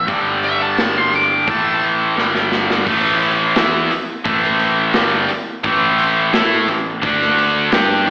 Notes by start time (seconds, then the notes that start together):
0.07 G1 G2 D3 G3, kick, open hi-hat
0.43 E5, open hi-hat
0.62 A5
0.78 snare, open hi-hat
0.98 C6
1.13 D6, open hi-hat
1.47 A1 A2 E3 A3 A5, kick, open hi-hat
1.83 open hi-hat
2.16 G1 G2 D3 G3, snare
2.35 snare
2.52 snare
2.70 snare
2.87 A1 A2 E3 A3, kick, crash
3.22 open hi-hat
3.56 E2 E3 B3 E4, snare, open hi-hat
3.91 muted distorted electric guitar stroke, muted fingered electric bass stroke, open hi-hat
4.25 A1 A2 E3 A3, kick, open hi-hat
4.43 snare
4.60 open hi-hat
4.94 G1 G2 D3 G3, snare, open hi-hat
5.29 muted distorted electric guitar stroke, muted fingered electric bass stroke, open hi-hat
5.64 A1 A2 E3 A3, kick, open hi-hat
5.99 open hi-hat
6.33 A2 A3 E4 A4, snare, open hi-hat
6.68 A1 A2 E3, open hi-hat
7.02 D2 D3 A3 D4, kick, open hi-hat
7.21 snare
7.38 open hi-hat
7.72 G2 G3 D4 G4, snare, open hi-hat
8.06 A1 A2